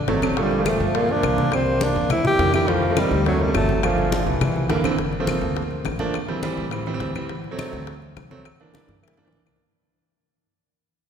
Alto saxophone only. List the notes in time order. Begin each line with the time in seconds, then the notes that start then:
0.39 G3
0.68 A3
0.96 A#3
1.12 D4
1.55 C4
1.83 D4
2.12 E4
2.27 G4
2.55 G4
2.69 F3
2.99 G3
3.27 F#3
3.42 G3
3.57 A3
3.85 F3
4.28 E3